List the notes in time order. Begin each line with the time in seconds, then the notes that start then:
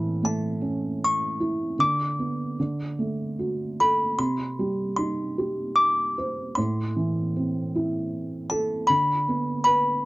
Already playing: A2 E3 A5
0.23 A3 A5
0.61 C#4
1.05 C#6
1.40 E4
1.79 D3 D6
2.19 B3
2.59 D3
2.99 A3
3.39 F#4
3.80 A4 B5
4.18 C3 C6
4.59 G3
4.96 D#4 C6
5.38 G4
5.76 D6
6.18 C5
6.55 A2 C6
6.96 E3
7.36 C4
7.75 E4
8.50 A4 A5
8.87 D3 B5
9.28 B3
9.64 B4 B5